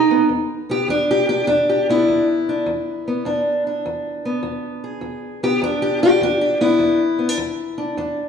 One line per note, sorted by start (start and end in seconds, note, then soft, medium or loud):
0.00 0.25 B2 medium
0.00 0.23 D#4 loud
0.11 0.27 B3 medium
0.29 0.84 E2 medium
0.70 1.89 B3 soft
0.70 0.89 G4 loud
0.88 1.43 E2 medium
0.88 1.29 D4 medium
1.11 1.28 G4 medium
1.29 1.47 D4 soft
1.29 1.48 G4 loud
1.47 2.03 E2 medium
1.47 2.26 D4 medium
1.69 1.88 G4 medium
1.89 3.07 B3 soft
1.89 4.24 E4 medium
2.08 2.62 E2 medium
2.49 2.69 D4 soft
2.66 3.21 E2 medium
3.08 4.25 B3 soft
3.25 3.80 E2 medium
3.25 3.66 D4 medium
3.67 5.04 D4 soft
3.86 4.39 E2 medium
4.25 5.43 B3 soft
4.43 4.98 E2 medium
4.84 5.43 G#4 soft
5.01 5.56 E2 medium
5.43 6.60 B3 soft
5.43 5.62 G4 loud
5.62 6.16 E2 medium
5.62 6.02 D4 medium
5.82 6.00 G4 medium
6.03 6.23 D4 soft
6.03 6.21 G4 loud
6.21 6.75 E2 medium
6.21 7.00 D4 medium
6.41 6.60 G4 medium
6.61 7.17 B3 medium
6.61 8.29 E4 loud
6.79 7.33 E2 medium
7.19 7.29 B3 soft
7.29 7.38 D4 soft
7.38 7.92 E2 medium
7.78 7.96 D4 soft
7.97 8.29 E2 medium
7.97 8.29 D4 medium